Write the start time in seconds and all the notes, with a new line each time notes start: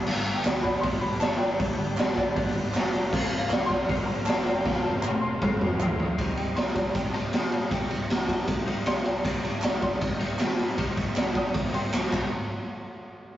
Already playing: D4 G4 B4 G5
0.05 G1 G2 D3 G3 B3 D4 F5, crash
0.25 G1 G3 B3 D4
0.34 G5
0.44 D2 D3 G3 B3 D4, snare, clap, open hi-hat
0.62 G3 B3 D4 B5, kick
0.81 G1 G2 D3 G3 D4 C6, kick, open hi-hat
0.85 B3 D4
1.00 B1 G3 B5
1.20 G1 D3 G3 B3 D4 A5, snare, clap, open hi-hat
1.38 G1 D3 B3 D4 G5
1.42 G3
1.58 G1 G2 D3 G3 B3 D4, kick, open hi-hat
1.77 G1 G3 B3 D4
1.97 G1 D3 G3 B3 D4, snare, clap, open hi-hat
2.16 G1 G3 B3 D4, kick
2.35 G1 G2 D3 G3 B3 D4, kick, open hi-hat
2.55 G1 G3
2.73 F1 D3 G3 B3 D4, snare, clap, open hi-hat
2.92 D3 G3 B3 D4
3.10 F1 F2 C3 F3 A#3 C4 F5, kick, crash
3.14 F4 A#4
3.29 F1 F3 A#3 C4
3.38 F5
3.49 C2 C3 F3 A#3 C4, snare, clap, open hi-hat
3.60 D6
3.66 C4 C6, kick
3.71 F3 A#3
3.88 F1 F2 C3 F3 A#3 C4, kick, open hi-hat
4.06 A#1 F3 A#5
4.25 F1 C3 F3 A#3 A5, snare, clap, open hi-hat
4.30 C4
4.45 F1 C3 F3 A#3 C4
4.54 G5
4.63 F1 F2 C3 F3 F5, kick, snare
4.67 A#3 C4
4.83 F1 A#3 C4 A5
4.88 F3
5.02 F1 C3 F3 A#3 A#5, clap, high tom
5.06 C4
5.21 F1 F3 A#3 C4 C6
5.41 F1 F2 C3 F3 A#3 C4, kick, mid tom
5.61 F1 F3, mid tom
5.79 A#1 C3 F3 A#3 C4, clap, floor tom
5.99 C3 F3 A#3 C4, floor tom
6.17 C2 C3 G3 C4 D#4 G4 D#5, kick, ride
6.22 D#4
6.37 G5, ride
6.56 C2 C6, snare, ride
6.75 C2 A#5, kick, ride
6.95 C2 G5, kick, ride
7.11 D#4 A5 A#5, ride
7.15 C2 C3 G3 C4
7.32 C3 G3 C4 D#4, snare, ride
7.52 A#2 F5, ride
7.70 C2 C3 G3 C4 D#4 G4 G5, kick, ride
7.91 C2, ride
8.10 C2, snare, ride
8.29 kick, ride
8.48 C2, kick, ride
8.66 C3 G3 C4 D#4, ride
8.85 C2 C3 G3 C4 D#4 C6, snare, ride
9.05 C2 G5, ride
9.23 C2 C3 G3 C4 G4 D#5, kick, ride
9.28 D#4
9.44 A#5, ride
9.59 A5, clap
9.63 C2 A#5, snare, ride
9.82 C2 C6, kick, ride
10.01 C2, kick, ride
10.19 C2 C3 G3 C4 D#4, ride
10.38 C3 G3 C4 D#4, snare, clap, ride
10.59 A#2, ride
10.77 C2 C3 G3 C4 D#4 G4, kick, ride
10.97 C2, kick, ride
11.16 C2, snare, clap, ride
11.35 D#6, kick, ride
11.54 C2, kick, ride
11.66 snare
11.73 C3 G3 C4 D#4 G5 C6, ride
11.93 C2 C3 G3 C4, snare, clap, ride
11.97 D#4
12.04 snare
12.12 C2 C3 G3 C4 D#4 C5 D#5, kick, clap, crash